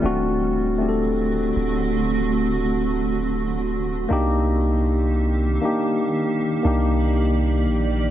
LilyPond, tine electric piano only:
\new Staff \with { instrumentName = "Tine electric piano" } { \time 4/4 \key d \phrygian \tempo 4 = 59 <a c' d' fis'>8 r16 <a c' d' g' a'>4. r4. r16 | <bes d' ees' g'>4~ <bes d' ees' g'>16 r16 <bes d' ees' g'>8. r16 <bes d' ees' g'>4~ <bes d' ees' g'>16 r16 | }